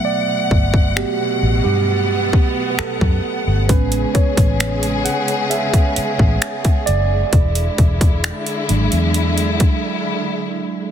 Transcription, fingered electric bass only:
X:1
M:4/4
L:1/16
Q:1/4=66
K:A
V:1 name="Fingered electric bass" clef=bass
z2 =G,,,3 z A,,, =G,,4 z2 F,, z G,,, | A,,,2 z A,,,4 z4 A,,, z2 F,,,2 | E,,,2 E,,,3 z G,,, E,,4 z4 z |]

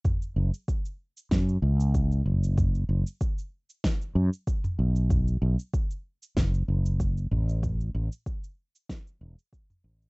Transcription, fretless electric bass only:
X:1
M:4/4
L:1/8
Q:"Swing 16ths" 1/4=95
K:F#m
V:1 name="Fretless electric bass" clef=bass
z F,,, z2 F,, C,,2 F,,,- | F,,, F,,, z3 F,, z B,,,- | B,,, B,,, z2 F,,, F,,,2 A,,,- | A,,, A,,, z3 E,,, z A,,, |]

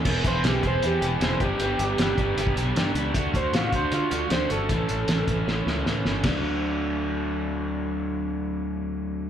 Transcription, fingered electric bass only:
X:1
M:4/4
L:1/8
Q:1/4=155
K:D
V:1 name="Fingered electric bass" clef=bass
E,,, E,,, B,,, E,,, E,, E,,, E,,, G,,, | G,,, G,,, G,,, G,,, G,,, B,,, G,, C,, | D,, D,, A,, D,, D, D,, D,, G,,, | A,,, A,,, A,,, A,,, A,,, C,, A,, G,,, |
D,,8- | D,,8 |]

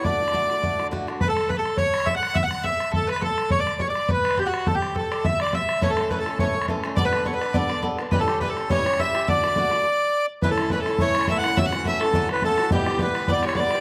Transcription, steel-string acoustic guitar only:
X:1
M:4/4
L:1/8
Q:"Swing" 1/4=208
K:Amix
V:1 name="Steel-string acoustic guitar"
[D,A,DF] [A,DF] [D,A,DF] [A,DF] [D,A,DF] [A,DF] [D,A,DF] [A,DF] | z8 | z8 | z8 |
z8 | [A,,E,A,CA] [A,CA] [E,A,CA] [A,CA] [A,,E,A,CA] [A,CA] [E,A,CA] [A,CA] | [G,B,DA] [B,DA] [G,B,DA] [B,DA] [G,B,DA] [B,DA] [G,B,DA] [B,DA] | [A,,E,G,CG] [G,CG] [E,G,CG] [G,CG] [A,,E,G,CG] [G,CG] [E,G,CG] [G,CG] |
[D,A,DF] [A,DF] [D,A,DF] [A,DF] z4 | [A,,E,A,CE] [A,CE] [E,A,CE] [A,CE] [A,,E,A,CE] [A,CE] [E,A,CE] [A,CE] | [F,,C,E,A,CF] [E,A,CF] [E,A,CF] [E,A,CF] [F,,C,E,A,CF] [E,A,CF] [E,A,CF] [E,A,CF] | [E,,B,,E,G,B,G] [E,G,B,G] [E,G,B,G] [E,G,B,G] [E,,B,,E,G,B,G] [E,G,B,G] [E,G,B,G] [E,G,B,G] |]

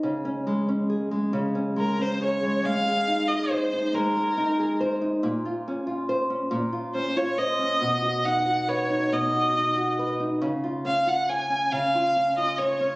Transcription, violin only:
X:1
M:6/8
L:1/16
Q:3/8=46
K:Db
V:1 name="Violin"
z8 B c d2 | f3 e c2 B4 z2 | z8 c d e2- | e2 g2 d2 e4 z2 |
z2 f g a2 f3 e d2 |]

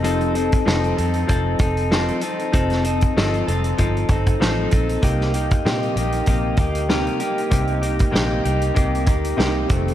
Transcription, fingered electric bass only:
X:1
M:4/4
L:1/8
Q:"Swing 16ths" 1/4=96
K:Cdor
V:1 name="Fingered electric bass" clef=bass
F,,,2 F,,, F,, F,,, F,,,2 z | F,,,2 G,,, F,,, G,,, G,,, A,,, B,,, | C,,2 B,, B,,, B,,, D,,2 z | C,,2 B,,, C,, C,, D,, C,, F,,, |]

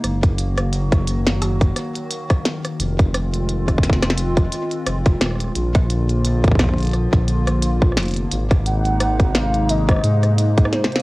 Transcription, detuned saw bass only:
X:1
M:4/4
L:1/16
Q:"Swing 16ths" 1/4=87
K:Ebm
V:1 name="Detuned saw bass" clef=bass
G,,,8- G,,,2 z6 | F,,,8- F,,,2 z2 F,,,2 E,,,2 | B,,,8- B,,, B,,,4- B,,, F,,,2 | A,,,8- A,,,2 A,,4- A,, z |]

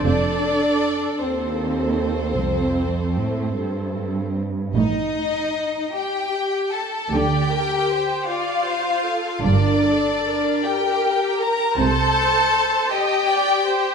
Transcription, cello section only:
X:1
M:12/8
L:1/8
Q:3/8=51
K:Fmix
V:1 name="Cello section" clef=bass
F,,3 E,,3 F,,2 A,, G,,3 | A,,3 z3 D,3 z3 | G,,3 z3 C,3 z3 |]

